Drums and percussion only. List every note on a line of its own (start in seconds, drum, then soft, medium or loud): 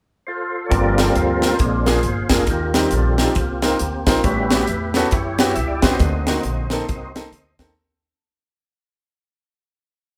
0.72 kick loud
0.72 closed hi-hat medium
0.98 snare medium
0.98 closed hi-hat medium
1.15 closed hi-hat medium
1.42 snare medium
1.42 closed hi-hat medium
1.59 kick medium
1.59 closed hi-hat medium
1.86 snare medium
1.86 closed hi-hat medium
2.03 closed hi-hat medium
2.29 kick medium
2.29 snare loud
2.29 closed hi-hat medium
2.47 kick medium
2.47 closed hi-hat medium
2.74 snare medium
2.74 closed hi-hat medium
2.91 closed hi-hat medium
3.18 snare medium
3.18 closed hi-hat medium
3.35 kick medium
3.35 closed hi-hat medium
3.62 snare medium
3.62 closed hi-hat medium
3.79 closed hi-hat medium
4.07 kick medium
4.07 snare loud
4.07 closed hi-hat medium
4.24 kick loud
4.24 closed hi-hat medium
4.51 snare medium
4.51 closed hi-hat medium
4.67 closed hi-hat medium
4.94 snare medium
4.94 closed hi-hat medium
5.11 kick medium
5.11 closed hi-hat medium
5.38 snare loud
5.38 closed hi-hat medium
5.56 closed hi-hat medium
5.82 kick medium
5.82 snare loud
5.82 closed hi-hat medium
5.99 kick medium
5.99 closed hi-hat medium
6.27 snare loud
6.27 closed hi-hat medium
6.43 closed hi-hat medium
6.70 snare medium
6.70 closed hi-hat medium
6.89 kick medium
6.89 closed hi-hat medium
7.16 snare loud
7.16 closed hi-hat medium
7.33 closed hi-hat medium
7.59 kick medium
7.59 snare loud
7.59 closed hi-hat medium